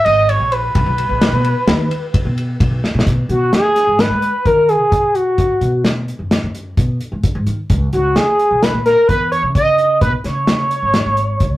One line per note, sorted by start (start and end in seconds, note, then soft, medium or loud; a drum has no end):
0.05 0.35 G#1 medium
0.05 0.30 D#5 medium
0.05 ride medium
0.28 0.53 C#5 loud
0.28 ride medium
0.40 0.69 A#1 medium
0.52 2.60 B4 loud
0.52 ride medium
0.75 0.85 B1 loud
0.75 kick loud
0.75 ride medium
0.86 1.06 B1 medium
0.98 ride medium
1.09 1.29 A#1 medium
1.21 snare loud
1.21 ride medium
1.32 1.52 B2 medium
1.44 ride medium
1.67 1.87 D#2 loud
1.67 snare loud
1.67 ride medium
1.91 ride medium
2.14 kick loud
2.14 ride medium
2.25 2.55 B2 medium
2.38 ride medium
2.60 2.80 B1 medium
2.60 kick loud
2.60 ride medium
2.84 snare medium
2.94 3.04 B2 medium
2.99 snare medium
3.07 3.26 B2 medium
3.07 kick medium
3.07 closed hi-hat medium
3.29 3.49 B2 medium
3.29 3.51 F#4 medium
3.29 closed hi-hat medium
3.53 4.01 G#4 loud
3.53 snare medium
3.53 closed hi-hat medium
3.76 snare soft
3.76 closed hi-hat medium
3.87 4.07 G#2 medium
3.99 4.47 B4 loud
3.99 snare loud
3.99 closed hi-hat medium
4.10 4.30 G#3 medium
4.22 closed hi-hat medium
4.45 4.80 D#3 medium
4.45 4.70 A#4 loud
4.45 kick medium
4.45 closed hi-hat medium
4.68 5.16 G#4 loud
4.68 closed hi-hat medium
4.80 5.38 B2 medium
4.92 kick loud
4.92 closed hi-hat medium
5.14 5.84 F#4 medium
5.14 closed hi-hat medium
5.38 5.48 G#2 medium
5.38 kick medium
5.38 closed hi-hat medium
5.61 6.10 B2 medium
5.61 closed hi-hat medium
5.85 snare loud
5.85 closed hi-hat medium
6.08 closed hi-hat soft
6.19 6.39 F#2 medium
6.31 snare loud
6.31 closed hi-hat medium
6.42 6.72 F#2 medium
6.55 closed hi-hat medium
6.77 6.97 B2 medium
6.77 kick medium
6.77 closed hi-hat medium
7.01 closed hi-hat medium
7.12 7.22 G#2 medium
7.24 kick medium
7.24 closed hi-hat medium
7.35 7.45 G#2 medium
7.46 7.56 D#3 medium
7.46 closed hi-hat medium
7.70 7.89 C#2 medium
7.70 kick loud
7.70 closed hi-hat medium
7.93 8.13 C#2 medium
7.93 8.17 F#4 medium
7.93 closed hi-hat medium
8.15 8.64 G#4 medium
8.15 snare medium
8.15 closed hi-hat medium
8.39 closed hi-hat soft
8.51 8.70 B1 medium
8.62 8.85 B4 loud
8.62 snare medium
8.62 closed hi-hat medium
8.73 8.93 A#2 medium
8.86 9.07 A#4 medium
8.86 snare soft
8.86 closed hi-hat medium
9.08 9.44 E2 medium
9.08 9.30 B4 loud
9.08 kick medium
9.08 closed hi-hat medium
9.32 9.42 C#5 medium
9.32 closed hi-hat medium
9.43 10.03 C#3 medium
9.55 9.98 D#5 medium
9.55 kick loud
9.55 closed hi-hat medium
9.78 closed hi-hat medium
10.01 10.11 B1 medium
10.01 10.12 B4 medium
10.01 kick loud
10.01 closed hi-hat medium
10.24 10.73 C#3 medium
10.24 11.57 C#5 medium
10.24 snare soft
10.24 closed hi-hat medium
10.47 snare loud
10.47 closed hi-hat medium
10.71 closed hi-hat medium
10.82 11.02 G#1 medium
10.94 snare medium
10.94 closed hi-hat medium
11.06 11.35 G#1 medium
11.17 closed hi-hat medium
11.40 11.57 C#2 medium
11.40 kick medium
11.40 closed hi-hat medium